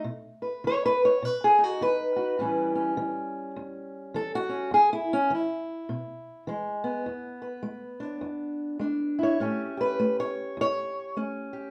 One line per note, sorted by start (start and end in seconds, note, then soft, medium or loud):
0.04 0.58 B2 medium
0.42 0.64 B4 soft
0.64 1.17 D#3 medium
0.64 0.85 C#5 loud
0.86 1.03 B4 loud
1.05 1.25 C#5 medium
1.22 1.76 B2 medium
1.22 1.43 B4 loud
1.44 1.64 G#4 loud
1.59 2.36 D#4 medium
1.64 1.81 F#4 loud
1.81 2.34 D#3 medium
1.81 2.98 B4 loud
2.16 2.36 F#4 medium
2.39 2.92 A2 medium
2.39 2.97 E3 medium
2.39 4.72 G3 soft
2.39 2.74 C#4 soft
2.75 4.48 C#4 soft
2.97 3.50 E3 medium
3.56 4.09 E2 medium
4.14 4.67 E3 medium
4.14 4.34 A4 loud
4.35 4.73 F#4 loud
4.49 4.69 C#4 medium
4.71 5.25 E2 medium
4.71 4.92 G#4 loud
4.93 5.11 E4 medium
5.13 5.31 C#4 loud
5.30 5.84 E3 medium
5.34 6.49 E4 loud
5.89 6.43 B2 medium
6.47 7.01 E3 medium
6.47 7.04 G#3 medium
6.84 9.18 B3 medium
7.06 7.60 E2 medium
7.42 8.05 B4 soft
7.63 8.18 G#3 medium
8.00 8.80 D4 medium
8.05 8.24 C#5 medium
8.21 8.76 E2 medium
8.79 9.35 G#3 medium
8.79 9.37 D4 soft
9.19 9.42 E4 medium
9.23 9.80 C#5 medium
9.40 9.95 A2 medium
9.40 9.98 A3 soft
9.40 11.16 C#4 soft
9.40 9.76 G4 soft
9.77 11.52 G4 soft
9.77 10.19 B4 loud
10.00 10.54 A3 medium
10.20 10.59 C#5 loud
10.57 11.12 E2 medium
10.61 11.18 C#5 loud
11.17 11.71 A3 medium
11.17 11.71 C#4 medium
11.53 11.71 G4 medium